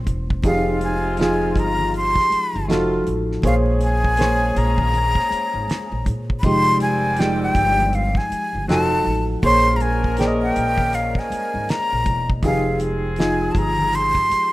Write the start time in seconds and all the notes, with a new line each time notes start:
Already playing: G#3 A#3 C#4 C5
0.04 E1, kick, closed hi-hat, high conga
0.30 kick
0.42 F1 C3 F3 G#3 D#4 F4 G4 G#4 F5, kick, closed hi-hat, muted conga, low conga
0.79 closed hi-hat, high conga
0.84 G#5
1.17 F3 D#4 F4, closed hi-hat, muted conga
1.21 G#4 G#5, snare
1.41 muted conga
1.55 G1, kick, closed hi-hat, high conga
1.59 A#5
1.79 low conga
1.94 C6, closed hi-hat
2.15 kick, snare, muted conga
2.30 muted upright bass stroke, closed hi-hat, high conga
2.53 G1, high conga
2.68 F1 C3 F3 A3 D#4 F4 F#4 A4, snare, closed hi-hat, high conga
3.04 A1, closed hi-hat, high conga
3.32 snare
3.42 A#1 F3 G#3 A#3 C#4 G#4 C5 C#5, kick, closed hi-hat, muted conga, low conga
3.47 F5
3.66 muted conga
3.79 closed hi-hat, high conga
3.84 G#5
4.04 kick
4.17 A#3 G#4 C5, closed hi-hat, muted conga
4.21 C#5, snare
4.41 muted conga
4.55 A#1 A#5, closed hi-hat, high conga
4.78 kick, low conga
4.93 closed hi-hat, muted conga, low conga
5.15 kick, muted conga
5.20 snare
5.31 muted upright bass stroke, closed hi-hat, high conga
5.54 G#1, high conga
5.68 muted upright bass stroke, snare, closed hi-hat, muted conga, high conga
5.92 A#1, muted conga
6.05 A#2, kick, closed hi-hat, high conga
6.30 kick
6.39 B5, kick, muted conga, low conga
6.43 F1 D#3 F3 G3 G#3 C4 D#4 G4 C6, closed hi-hat
6.67 muted conga
6.79 G#5, closed hi-hat, high conga
7.17 F3 D#4 G4 G5, closed hi-hat, muted conga
7.21 G#3, snare
7.41 G5, muted conga
7.55 G1, kick, closed hi-hat, high conga
7.79 low conga
7.93 F5, closed hi-hat, muted conga
8.15 G#5, kick, snare, muted conga
8.30 muted upright bass stroke, closed hi-hat, high conga
8.53 G1, high conga
8.67 F1 D#3 F3 F#3 C4 D#4 F#4 A4 A5, snare, closed hi-hat, muted conga, high conga
9.03 A1, open hi-hat, high conga
9.42 A#1 F3 A#3 C#4 G#4 A#4 C5 C#5 C6, kick, closed hi-hat, low conga
9.66 muted conga
9.76 A#5, high conga
9.80 G#5, closed hi-hat
10.04 kick
10.17 A#3 G#4 C5 G5, closed hi-hat
10.21 D5, snare
10.28 D#5
10.41 G5, muted conga
10.54 A#1, closed hi-hat, high conga
10.78 kick, low conga
10.93 F5, closed hi-hat, muted conga
11.15 G#5, kick, snare
11.30 muted upright bass stroke, closed hi-hat, high conga
11.54 G#1, high conga
11.68 A#5, snare, closed hi-hat, muted conga, high conga
11.92 A#1, muted conga
12.04 E1, kick, closed hi-hat, high conga
12.30 kick
12.43 F1 D#3 F3 G#3 C4 D#4 G4 G#4 F5, kick, closed hi-hat, muted conga, low conga
12.66 muted conga
12.79 closed hi-hat, high conga
13.16 F3 D#4 F4 G#5, closed hi-hat, muted conga
13.20 G#4, snare
13.41 muted conga
13.52 G1 A5, kick, high conga
13.56 A#5, closed hi-hat
13.79 low conga
13.93 C6, closed hi-hat, muted conga
14.15 kick, muted conga
14.30 muted upright bass stroke, closed hi-hat, high conga